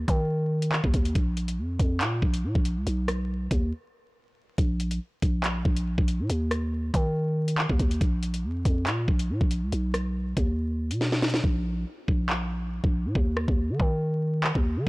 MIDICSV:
0, 0, Header, 1, 3, 480
1, 0, Start_track
1, 0, Tempo, 428571
1, 1291, Time_signature, 4, 2, 24, 8
1, 16676, End_track
2, 0, Start_track
2, 0, Title_t, "808-style bass"
2, 0, Program_c, 0, 38
2, 90, Note_on_c, 0, 51, 111
2, 904, Note_off_c, 0, 51, 0
2, 938, Note_on_c, 0, 39, 101
2, 1044, Note_off_c, 0, 39, 0
2, 1051, Note_on_c, 0, 39, 108
2, 1281, Note_off_c, 0, 39, 0
2, 1291, Note_on_c, 0, 34, 110
2, 1772, Note_on_c, 0, 41, 103
2, 1789, Note_off_c, 0, 34, 0
2, 1999, Note_off_c, 0, 41, 0
2, 2011, Note_on_c, 0, 41, 112
2, 2251, Note_on_c, 0, 46, 100
2, 2267, Note_off_c, 0, 41, 0
2, 2479, Note_off_c, 0, 46, 0
2, 2490, Note_on_c, 0, 34, 108
2, 2730, Note_on_c, 0, 46, 98
2, 2747, Note_off_c, 0, 34, 0
2, 2851, Note_off_c, 0, 46, 0
2, 2858, Note_on_c, 0, 34, 107
2, 3098, Note_on_c, 0, 37, 97
2, 3114, Note_off_c, 0, 34, 0
2, 3205, Note_off_c, 0, 37, 0
2, 3210, Note_on_c, 0, 35, 116
2, 3901, Note_off_c, 0, 35, 0
2, 3931, Note_on_c, 0, 39, 107
2, 4171, Note_off_c, 0, 39, 0
2, 5131, Note_on_c, 0, 34, 118
2, 5592, Note_off_c, 0, 34, 0
2, 5850, Note_on_c, 0, 34, 107
2, 6311, Note_off_c, 0, 34, 0
2, 6330, Note_on_c, 0, 34, 106
2, 6683, Note_off_c, 0, 34, 0
2, 6699, Note_on_c, 0, 34, 103
2, 6938, Note_on_c, 0, 46, 99
2, 6955, Note_off_c, 0, 34, 0
2, 7045, Note_off_c, 0, 46, 0
2, 7051, Note_on_c, 0, 39, 112
2, 7742, Note_off_c, 0, 39, 0
2, 7771, Note_on_c, 0, 51, 108
2, 8584, Note_off_c, 0, 51, 0
2, 8619, Note_on_c, 0, 39, 104
2, 8727, Note_off_c, 0, 39, 0
2, 8732, Note_on_c, 0, 39, 101
2, 8962, Note_off_c, 0, 39, 0
2, 8971, Note_on_c, 0, 34, 107
2, 9452, Note_on_c, 0, 41, 105
2, 9469, Note_off_c, 0, 34, 0
2, 9680, Note_off_c, 0, 41, 0
2, 9691, Note_on_c, 0, 41, 108
2, 9932, Note_on_c, 0, 46, 99
2, 9949, Note_off_c, 0, 41, 0
2, 10160, Note_off_c, 0, 46, 0
2, 10170, Note_on_c, 0, 34, 103
2, 10413, Note_on_c, 0, 46, 105
2, 10430, Note_off_c, 0, 34, 0
2, 10533, Note_off_c, 0, 46, 0
2, 10538, Note_on_c, 0, 34, 105
2, 10779, Note_on_c, 0, 37, 102
2, 10796, Note_off_c, 0, 34, 0
2, 10886, Note_off_c, 0, 37, 0
2, 10892, Note_on_c, 0, 35, 117
2, 11582, Note_off_c, 0, 35, 0
2, 11611, Note_on_c, 0, 39, 111
2, 12218, Note_on_c, 0, 47, 101
2, 12235, Note_off_c, 0, 39, 0
2, 12781, Note_off_c, 0, 47, 0
2, 12811, Note_on_c, 0, 34, 115
2, 13272, Note_off_c, 0, 34, 0
2, 13531, Note_on_c, 0, 34, 105
2, 14344, Note_off_c, 0, 34, 0
2, 14379, Note_on_c, 0, 34, 105
2, 14618, Note_on_c, 0, 46, 97
2, 14635, Note_off_c, 0, 34, 0
2, 14725, Note_off_c, 0, 46, 0
2, 14732, Note_on_c, 0, 39, 115
2, 15084, Note_off_c, 0, 39, 0
2, 15098, Note_on_c, 0, 39, 106
2, 15338, Note_on_c, 0, 51, 97
2, 15355, Note_off_c, 0, 39, 0
2, 15445, Note_off_c, 0, 51, 0
2, 15451, Note_on_c, 0, 51, 102
2, 16264, Note_off_c, 0, 51, 0
2, 16299, Note_on_c, 0, 39, 104
2, 16538, Note_on_c, 0, 51, 97
2, 16554, Note_off_c, 0, 39, 0
2, 16645, Note_off_c, 0, 51, 0
2, 16676, End_track
3, 0, Start_track
3, 0, Title_t, "Drums"
3, 90, Note_on_c, 9, 36, 92
3, 91, Note_on_c, 9, 42, 84
3, 202, Note_off_c, 9, 36, 0
3, 203, Note_off_c, 9, 42, 0
3, 697, Note_on_c, 9, 42, 92
3, 809, Note_off_c, 9, 42, 0
3, 811, Note_on_c, 9, 39, 113
3, 923, Note_off_c, 9, 39, 0
3, 938, Note_on_c, 9, 36, 100
3, 1049, Note_on_c, 9, 42, 75
3, 1050, Note_off_c, 9, 36, 0
3, 1051, Note_on_c, 9, 36, 102
3, 1161, Note_off_c, 9, 42, 0
3, 1163, Note_off_c, 9, 36, 0
3, 1178, Note_on_c, 9, 42, 78
3, 1290, Note_off_c, 9, 42, 0
3, 1290, Note_on_c, 9, 42, 85
3, 1291, Note_on_c, 9, 36, 113
3, 1402, Note_off_c, 9, 42, 0
3, 1403, Note_off_c, 9, 36, 0
3, 1533, Note_on_c, 9, 42, 74
3, 1645, Note_off_c, 9, 42, 0
3, 1658, Note_on_c, 9, 42, 84
3, 1770, Note_off_c, 9, 42, 0
3, 2011, Note_on_c, 9, 36, 92
3, 2011, Note_on_c, 9, 42, 84
3, 2123, Note_off_c, 9, 36, 0
3, 2123, Note_off_c, 9, 42, 0
3, 2250, Note_on_c, 9, 39, 123
3, 2250, Note_on_c, 9, 42, 69
3, 2362, Note_off_c, 9, 39, 0
3, 2362, Note_off_c, 9, 42, 0
3, 2490, Note_on_c, 9, 36, 96
3, 2602, Note_off_c, 9, 36, 0
3, 2617, Note_on_c, 9, 42, 96
3, 2729, Note_off_c, 9, 42, 0
3, 2858, Note_on_c, 9, 36, 98
3, 2969, Note_on_c, 9, 42, 80
3, 2970, Note_off_c, 9, 36, 0
3, 3081, Note_off_c, 9, 42, 0
3, 3210, Note_on_c, 9, 42, 87
3, 3322, Note_off_c, 9, 42, 0
3, 3451, Note_on_c, 9, 37, 101
3, 3453, Note_on_c, 9, 42, 76
3, 3563, Note_off_c, 9, 37, 0
3, 3565, Note_off_c, 9, 42, 0
3, 3931, Note_on_c, 9, 36, 91
3, 3931, Note_on_c, 9, 42, 85
3, 4043, Note_off_c, 9, 36, 0
3, 4043, Note_off_c, 9, 42, 0
3, 5131, Note_on_c, 9, 36, 114
3, 5131, Note_on_c, 9, 42, 88
3, 5243, Note_off_c, 9, 36, 0
3, 5243, Note_off_c, 9, 42, 0
3, 5373, Note_on_c, 9, 42, 76
3, 5485, Note_off_c, 9, 42, 0
3, 5498, Note_on_c, 9, 42, 84
3, 5610, Note_off_c, 9, 42, 0
3, 5851, Note_on_c, 9, 36, 91
3, 5851, Note_on_c, 9, 42, 84
3, 5963, Note_off_c, 9, 36, 0
3, 5963, Note_off_c, 9, 42, 0
3, 6091, Note_on_c, 9, 39, 120
3, 6091, Note_on_c, 9, 42, 70
3, 6203, Note_off_c, 9, 39, 0
3, 6203, Note_off_c, 9, 42, 0
3, 6330, Note_on_c, 9, 36, 92
3, 6442, Note_off_c, 9, 36, 0
3, 6458, Note_on_c, 9, 42, 92
3, 6570, Note_off_c, 9, 42, 0
3, 6698, Note_on_c, 9, 36, 104
3, 6809, Note_on_c, 9, 42, 83
3, 6810, Note_off_c, 9, 36, 0
3, 6921, Note_off_c, 9, 42, 0
3, 7051, Note_on_c, 9, 42, 86
3, 7163, Note_off_c, 9, 42, 0
3, 7291, Note_on_c, 9, 37, 98
3, 7293, Note_on_c, 9, 42, 75
3, 7403, Note_off_c, 9, 37, 0
3, 7405, Note_off_c, 9, 42, 0
3, 7771, Note_on_c, 9, 36, 91
3, 7772, Note_on_c, 9, 42, 85
3, 7883, Note_off_c, 9, 36, 0
3, 7884, Note_off_c, 9, 42, 0
3, 8378, Note_on_c, 9, 42, 92
3, 8490, Note_off_c, 9, 42, 0
3, 8492, Note_on_c, 9, 39, 115
3, 8604, Note_off_c, 9, 39, 0
3, 8619, Note_on_c, 9, 36, 103
3, 8730, Note_on_c, 9, 42, 74
3, 8731, Note_off_c, 9, 36, 0
3, 8732, Note_on_c, 9, 36, 102
3, 8842, Note_off_c, 9, 42, 0
3, 8844, Note_off_c, 9, 36, 0
3, 8860, Note_on_c, 9, 42, 77
3, 8971, Note_on_c, 9, 36, 115
3, 8972, Note_off_c, 9, 42, 0
3, 8972, Note_on_c, 9, 42, 88
3, 9083, Note_off_c, 9, 36, 0
3, 9084, Note_off_c, 9, 42, 0
3, 9213, Note_on_c, 9, 42, 75
3, 9325, Note_off_c, 9, 42, 0
3, 9338, Note_on_c, 9, 42, 84
3, 9450, Note_off_c, 9, 42, 0
3, 9691, Note_on_c, 9, 36, 94
3, 9691, Note_on_c, 9, 42, 83
3, 9803, Note_off_c, 9, 36, 0
3, 9803, Note_off_c, 9, 42, 0
3, 9930, Note_on_c, 9, 39, 125
3, 9930, Note_on_c, 9, 42, 69
3, 10042, Note_off_c, 9, 39, 0
3, 10042, Note_off_c, 9, 42, 0
3, 10170, Note_on_c, 9, 36, 98
3, 10282, Note_off_c, 9, 36, 0
3, 10297, Note_on_c, 9, 42, 95
3, 10409, Note_off_c, 9, 42, 0
3, 10538, Note_on_c, 9, 36, 100
3, 10650, Note_off_c, 9, 36, 0
3, 10650, Note_on_c, 9, 42, 82
3, 10762, Note_off_c, 9, 42, 0
3, 10891, Note_on_c, 9, 42, 88
3, 11003, Note_off_c, 9, 42, 0
3, 11132, Note_on_c, 9, 37, 99
3, 11134, Note_on_c, 9, 42, 78
3, 11244, Note_off_c, 9, 37, 0
3, 11246, Note_off_c, 9, 42, 0
3, 11611, Note_on_c, 9, 36, 93
3, 11611, Note_on_c, 9, 42, 83
3, 11723, Note_off_c, 9, 36, 0
3, 11723, Note_off_c, 9, 42, 0
3, 12218, Note_on_c, 9, 42, 94
3, 12330, Note_off_c, 9, 42, 0
3, 12331, Note_on_c, 9, 38, 66
3, 12443, Note_off_c, 9, 38, 0
3, 12458, Note_on_c, 9, 38, 67
3, 12570, Note_off_c, 9, 38, 0
3, 12572, Note_on_c, 9, 38, 100
3, 12572, Note_on_c, 9, 42, 46
3, 12652, Note_off_c, 9, 42, 0
3, 12652, Note_on_c, 9, 42, 65
3, 12684, Note_off_c, 9, 38, 0
3, 12699, Note_on_c, 9, 38, 96
3, 12731, Note_off_c, 9, 42, 0
3, 12731, Note_on_c, 9, 42, 77
3, 12811, Note_off_c, 9, 38, 0
3, 12811, Note_on_c, 9, 36, 108
3, 12843, Note_off_c, 9, 42, 0
3, 12923, Note_off_c, 9, 36, 0
3, 13531, Note_on_c, 9, 36, 91
3, 13643, Note_off_c, 9, 36, 0
3, 13771, Note_on_c, 9, 39, 122
3, 13883, Note_off_c, 9, 39, 0
3, 14379, Note_on_c, 9, 36, 101
3, 14491, Note_off_c, 9, 36, 0
3, 14731, Note_on_c, 9, 36, 111
3, 14843, Note_off_c, 9, 36, 0
3, 14971, Note_on_c, 9, 37, 96
3, 15083, Note_off_c, 9, 37, 0
3, 15098, Note_on_c, 9, 36, 97
3, 15210, Note_off_c, 9, 36, 0
3, 15451, Note_on_c, 9, 36, 92
3, 15563, Note_off_c, 9, 36, 0
3, 16171, Note_on_c, 9, 39, 110
3, 16283, Note_off_c, 9, 39, 0
3, 16298, Note_on_c, 9, 36, 95
3, 16410, Note_off_c, 9, 36, 0
3, 16676, End_track
0, 0, End_of_file